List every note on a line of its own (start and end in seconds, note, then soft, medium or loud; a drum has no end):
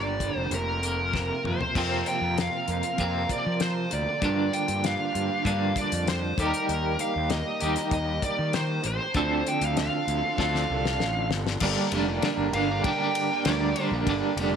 0.00 0.29 G1 medium
0.00 0.53 G2 medium
0.00 0.53 D3 medium
0.00 1.73 A#3 medium
0.00 0.51 D4 medium
0.00 0.49 G4 medium
0.00 0.51 A#4 medium
0.00 0.36 D5 loud
0.20 0.53 G3 medium
0.20 kick medium
0.20 closed hi-hat medium
0.35 0.49 F1 medium
0.35 0.50 C5 loud
0.51 1.30 F1 medium
0.51 1.74 F2 medium
0.51 1.75 C4 medium
0.51 1.74 F4 medium
0.51 1.75 A#4 medium
0.51 1.42 A#4 medium
0.51 closed hi-hat medium
0.83 1.76 A#3 medium
0.83 closed hi-hat medium
1.13 1.75 C3 medium
1.13 kick medium
1.13 snare medium
1.44 1.58 F2 medium
1.44 1.76 F3 medium
1.44 2.10 C5 medium
1.44 mid tom medium
1.61 floor tom medium
1.75 2.02 F2 medium
1.75 2.97 F2 medium
1.75 2.98 C3 medium
1.75 2.98 F3 medium
1.75 3.00 A#3 medium
1.75 9.13 A#3 medium
1.75 4.21 C4 medium
1.75 2.99 C4 loud
1.75 6.36 F4 medium
1.75 4.21 A#4 medium
1.75 kick loud
1.75 crash loud
2.06 2.36 G5 medium
2.06 closed hi-hat medium
2.21 2.48 F2 medium
2.38 2.99 F5 medium
2.38 snare loud
2.38 closed hi-hat medium
2.68 2.81 F2 medium
2.68 closed hi-hat medium
2.83 closed hi-hat medium
2.98 3.25 F2 loud
2.98 4.21 F2 medium
2.98 4.21 C3 medium
2.98 4.21 F3 medium
2.98 4.24 A#3 medium
2.98 4.22 C4 medium
2.98 3.31 F5 medium
2.98 kick medium
2.98 closed hi-hat medium
3.29 3.62 D5 medium
3.29 kick medium
3.29 closed hi-hat medium
3.46 3.85 F3 loud
3.60 3.93 C5 medium
3.60 snare loud
3.60 closed hi-hat medium
3.91 4.05 D2 medium
3.91 4.56 D5 medium
3.91 closed hi-hat medium
4.20 4.49 G2 medium
4.20 5.44 G2 medium
4.20 5.44 D3 loud
4.20 5.45 F3 medium
4.20 6.35 D4 medium
4.20 6.36 G4 medium
4.20 kick loud
4.20 closed hi-hat medium
4.24 5.46 A#3 medium
4.24 5.45 D4 loud
4.53 4.85 G5 medium
4.53 closed hi-hat medium
4.68 4.95 G2 medium
4.68 closed hi-hat medium
4.84 5.45 F5 loud
4.84 snare loud
4.84 closed hi-hat medium
5.15 5.28 G2 medium
5.15 closed hi-hat medium
5.45 6.36 G2 medium
5.45 5.72 G2 loud
5.45 6.37 D3 medium
5.45 6.37 F3 medium
5.45 6.37 A#3 medium
5.45 6.37 D4 medium
5.45 5.77 F5 medium
5.45 kick medium
5.45 closed hi-hat medium
5.76 6.06 D5 medium
5.76 kick medium
5.76 closed hi-hat medium
5.92 6.32 F2 medium
5.92 closed hi-hat medium
6.07 6.39 C5 medium
6.07 snare loud
6.07 closed hi-hat medium
6.37 6.51 D#2 medium
6.37 7.60 D#3 medium
6.37 7.60 G3 medium
6.37 7.61 A#3 medium
6.37 9.13 D#4 medium
6.37 7.61 D#4 medium
6.37 9.13 G4 medium
6.37 7.60 G4 medium
6.37 9.13 A#4 medium
6.37 7.03 A#4 medium
6.37 kick loud
6.37 closed hi-hat medium
6.54 closed hi-hat medium
6.69 6.95 D#2 medium
6.69 closed hi-hat medium
6.99 7.30 F5 medium
6.99 closed hi-hat medium
7.16 7.42 D#2 medium
7.30 7.89 D#5 loud
7.30 snare loud
7.30 closed hi-hat medium
7.60 7.75 D#2 loud
7.60 8.84 D#3 medium
7.60 8.84 G3 medium
7.60 8.84 A#3 medium
7.60 8.83 D#4 medium
7.60 8.83 G4 medium
7.60 closed hi-hat medium
7.76 snare soft
7.76 closed hi-hat medium
7.91 8.18 D#2 loud
7.91 8.23 D#5 medium
7.91 kick medium
7.91 closed hi-hat medium
8.22 8.56 D5 medium
8.22 kick medium
8.22 closed hi-hat medium
8.39 8.78 D#3 medium
8.53 8.86 C5 medium
8.53 snare loud
8.53 closed hi-hat medium
8.84 8.98 A1 medium
8.84 9.50 C5 medium
8.84 closed hi-hat medium
9.14 9.41 D2 medium
9.14 10.37 D3 medium
9.14 10.38 F3 medium
9.14 10.38 C4 loud
9.14 11.61 C4 medium
9.14 10.38 D4 loud
9.14 11.60 D4 medium
9.14 11.60 F4 medium
9.14 11.60 A4 medium
9.14 10.38 A4 loud
9.14 kick loud
9.14 closed hi-hat medium
9.47 9.64 G5 medium
9.47 closed hi-hat medium
9.61 9.88 D2 medium
9.61 9.77 F5 medium
9.61 closed hi-hat medium
9.77 10.36 F5 loud
9.77 snare loud
9.77 closed hi-hat medium
10.07 10.21 D2 medium
10.07 closed hi-hat medium
10.38 10.65 D2 loud
10.38 11.60 D3 medium
10.38 11.60 F3 medium
10.38 11.61 C4 medium
10.38 11.61 D4 loud
10.38 11.61 A4 medium
10.38 11.28 F5 medium
10.38 kick medium
10.38 snare medium
10.55 snare medium
10.70 10.98 C2 medium
10.85 snare medium
11.00 11.29 A1 medium
11.00 snare medium
11.30 11.58 G1 medium
11.30 snare medium
11.47 snare medium
11.60 11.75 G1 loud
11.60 12.23 G2 loud
11.60 11.92 D3 loud
11.60 14.56 D3 medium
11.60 11.93 G3 loud
11.60 11.94 A#3 loud
11.60 14.56 A#3 medium
11.60 11.94 D4 loud
11.60 14.56 G4 medium
11.60 14.06 A#4 medium
11.60 kick loud
11.60 crash loud
11.92 12.19 F1 loud
11.92 12.23 D3 medium
11.92 12.09 G3 medium
11.92 12.09 A#3 medium
11.92 12.08 D4 medium
11.92 ride medium
12.08 12.24 G3 medium
12.08 12.25 A#3 medium
12.08 12.25 D4 medium
12.22 13.46 G2 medium
12.22 12.54 D3 loud
12.22 12.55 G3 medium
12.22 12.56 A#3 loud
12.22 12.56 D4 loud
12.22 snare loud
12.22 ride medium
12.37 12.51 G1 medium
12.52 12.80 G1 loud
12.52 12.85 D3 medium
12.52 12.71 G3 medium
12.52 12.71 A#3 medium
12.52 12.83 F5 medium
12.52 ride medium
12.57 12.71 D4 medium
12.71 12.85 G3 medium
12.71 12.87 A#3 medium
12.71 12.87 D4 medium
12.84 13.32 D3 medium
12.84 13.03 G3 medium
12.84 13.03 A#3 medium
12.84 12.97 G5 loud
12.84 kick loud
12.84 ride loud
12.88 13.01 D4 medium
12.99 13.31 D4 medium
12.99 13.43 G5 medium
13.03 13.32 G3 medium
13.03 13.32 A#3 medium
13.15 ride medium
13.31 13.46 G3 medium
13.31 13.47 A#3 medium
13.31 13.48 D4 medium
13.45 13.72 D2 loud
13.45 14.07 G2 loud
13.45 13.76 D3 loud
13.45 13.77 G3 loud
13.45 13.78 A#3 loud
13.45 13.79 D4 loud
13.45 13.89 D5 medium
13.45 snare loud
13.45 ride loud
13.76 14.08 D3 medium
13.76 13.93 G3 medium
13.76 13.93 A#3 medium
13.76 13.93 D4 medium
13.76 ride medium
13.91 14.05 A#1 loud
13.91 14.08 G3 medium
13.91 14.10 A#3 medium
14.06 14.20 G1 loud
14.06 14.56 G2 loud
14.06 14.38 D3 loud
14.06 14.39 G3 loud
14.06 14.40 A#3 loud
14.06 14.41 D4 loud
14.06 14.56 A4 medium
14.06 kick loud
14.06 ride loud
14.36 14.56 F1 loud
14.36 14.56 D3 medium
14.36 14.55 G3 medium
14.36 14.55 A#3 medium
14.36 ride medium
14.41 14.54 D4 medium